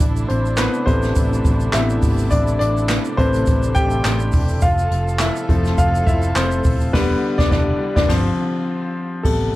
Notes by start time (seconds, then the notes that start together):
Already playing: D4 E4
0.00 A1 C3 A3, kick, closed hi-hat, shaker
0.17 shaker
0.28 A1 C4 C5, closed hi-hat
0.46 shaker
0.57 B3 B4, snare, clap, closed hi-hat, shaker
0.74 shaker
0.86 A1 C3 A3 C4 B4 C5, kick, closed hi-hat
1.03 snare, shaker
1.15 A1, kick, closed hi-hat, shaker
1.33 shaker
1.45 A1, kick, closed hi-hat, shaker
1.60 shaker
1.73 A1 C3 A3 B3 E4 E5, snare, clap, closed hi-hat, shaker
1.90 shaker
2.02 G#1, kick, open hi-hat, shaker
2.18 shaker
2.31 A1 D4 D5, kick, closed hi-hat, shaker
2.47 shaker
2.59 A1 D4 D5, closed hi-hat
2.77 shaker
2.89 snare, clap, closed hi-hat, shaker
3.05 shaker
3.17 A1 C3 A3 C4 B4 C5, kick, closed hi-hat
3.34 closed hi-hat, shaker
3.46 A1, kick, closed hi-hat, shaker
3.63 shaker
3.75 A1 G4 G5, kick, closed hi-hat, shaker
3.90 shaker
4.04 A1, snare, clap, closed hi-hat, shaker
4.20 shaker
4.32 E1, kick, open hi-hat, shaker
4.49 shaker
4.61 F1 C3 F3 F4 A4 F5, kick, closed hi-hat, shaker
4.78 shaker
4.91 F1, closed hi-hat
5.08 shaker
5.19 E4 E5, snare, clap, closed hi-hat, shaker
5.36 shaker
5.48 F1 F3 A3 C4, kick, closed hi-hat
5.65 snare, shaker
5.78 F1 F4 F5, kick, closed hi-hat, shaker
5.95 shaker
6.06 F1 E4 E5, kick, closed hi-hat, shaker
6.22 shaker
6.36 F1 C4 C5, snare, clap, closed hi-hat, shaker
6.51 shaker
6.64 D#1, kick, open hi-hat, shaker
6.80 shaker
6.93 E1 D3 G3 B3 E4 B4, kick, snare, crash
7.38 E1 D4 D5, kick, snare
7.51 E1 D4 D5, kick, snare
7.96 E1 D4 D5, kick, snare
8.09 G1 F3 C4 F4, kick, snare, crash
9.23 A1 C3 G3 A3 B3 A4, kick, crash